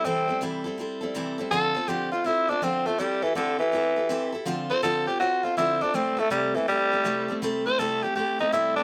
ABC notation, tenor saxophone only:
X:1
M:4/4
L:1/8
Q:"Swing" 1/4=163
K:C
V:1 name="Tenor saxophone"
C2 z6 | A2 G F E D C A, | G, E, D, E,4 z | z c A G ^F =F E D |
C A, G, E, G,4 | z c A G G _E =E D |]